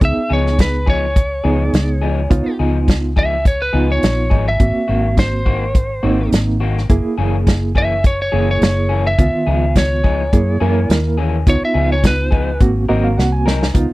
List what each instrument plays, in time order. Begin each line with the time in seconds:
0.01 fingered electric bass C#2, reed electric piano B3 D#4 G#4, lead electric guitar E5, kick, closed hi-hat
0.17 muted fingered electric bass stroke
0.30 fingered electric bass C#2, clean electric guitar F3 B3 D#4 G#4, lead electric guitar C#5
0.46 snare
0.59 lead electric guitar B4, kick, snare, closed hi-hat
0.86 clean electric guitar F3 B3 D#4 G#4, lead electric guitar C#5, kick
1.16 kick, closed hi-hat
1.44 fingered electric bass C#2, clean electric guitar F3 B3 D#4 G#4, reed electric piano B3 D#4 G#4
1.73 fingered electric bass C#2, snare, closed hi-hat
2.02 clean electric guitar F3 B3 D#4 G#4
2.30 fingered electric bass C#2, reed electric piano B3 D#4 F4, kick, closed hi-hat
2.59 fingered electric bass C#2, clean electric guitar F3 B3 D#4 G#4
2.88 kick, snare, closed hi-hat
3.16 clean electric guitar F3 B3 D#4 G#4, lead electric guitar E5, kick
3.45 lead electric guitar C#5, kick, closed hi-hat
3.62 lead electric guitar B4
3.73 fingered electric bass C#2, clean electric guitar F3 B3 D#4 G#4, reed electric piano B3 D#4 F4
3.92 lead electric guitar C#5
4.03 fingered electric bass A#1, snare, closed hi-hat
4.30 fingered electric bass G#1, clean electric guitar F3 B3 D#4 G#4, kick
4.48 lead electric guitar E5
4.60 fingered electric bass G#1, reed electric piano A#3 C4 F#4, kick, closed hi-hat
4.88 fingered electric bass G#1, clean electric guitar D#3 A#3 C4 F#4
5.17 lead electric guitar C5, kick, snare, closed hi-hat
5.46 clean electric guitar D#3 A#3 C4 F#4, kick
5.75 kick, closed hi-hat
6.03 fingered electric bass G#1, clean electric guitar D#3 A#3 C4 F#4, reed electric piano A#3 C4 D#4
6.32 fingered electric bass G#1, snare, closed hi-hat
6.60 clean electric guitar D#3 A#3 C4 F#4
6.78 snare
6.89 fingered electric bass F#1, reed electric piano A#3 E4 G#4, kick, closed hi-hat
7.05 muted fingered electric bass stroke
7.18 fingered electric bass F#1, clean electric guitar E3 A#3 C#4 G#4
7.47 kick, snare, closed hi-hat
7.75 clean electric guitar E3 A#3 C#4 G#4, lead electric guitar E5, kick
8.04 lead electric guitar C#5, kick, closed hi-hat
8.22 lead electric guitar C#5
8.32 fingered electric bass F#1, clean electric guitar E3 A#3 C#4 G#4, reed electric piano A#3 E4 G#4
8.51 lead electric guitar C#5
8.61 fingered electric bass F#1, snare, closed hi-hat
8.89 clean electric guitar E3 A#3 C#4 G#4
9.07 lead electric guitar E5
9.19 fingered electric bass C#2, reed electric piano D#3 B3 F4, kick, closed hi-hat
9.34 muted fingered electric bass stroke
9.47 fingered electric bass C#2, clean electric guitar F3 B3 D#4 G#4
9.75 lead electric guitar C#5, kick, snare, closed hi-hat
10.04 clean electric guitar F3 B3 D#4 G#4, kick
10.33 fingered electric bass F#2, reed electric piano A#3 E4 G#4, kick, closed hi-hat
10.60 fingered electric bass F#2, clean electric guitar E3 A#3 C#4 G#4, reed electric piano A#3 E4 A#4
10.89 fingered electric bass D#2, snare, closed hi-hat
11.18 clean electric guitar E3 A#3 C#4 G#4
11.47 fingered electric bass C#2, reed electric piano B3 D#4 F4, lead electric guitar C#5, kick, closed hi-hat
11.61 lead electric guitar E5, muted fingered electric bass stroke
11.74 fingered electric bass C#2, clean electric guitar F3 B3 D#4 G#4
11.92 lead electric guitar C#5
12.04 lead electric guitar B4, kick, snare, closed hi-hat
12.31 clean electric guitar F3 B3 D#4 G#4, kick
12.60 fingered electric bass G#1, reed electric piano A#3 C4 F#4, kick, closed hi-hat
12.88 fingered electric bass G#1, clean electric guitar F#3 C4 D#4 A#4, reed electric piano A#3 C4 F#4 D#5
13.04 reed electric piano F5
13.18 fingered electric bass C2, reed electric piano F#5, snare
13.32 reed electric piano G#5
13.46 clean electric guitar F#3 C4 D#4 A#4, snare
13.63 snare
13.74 fingered electric bass C#2, reed electric piano B3 D#4 F4, kick, closed hi-hat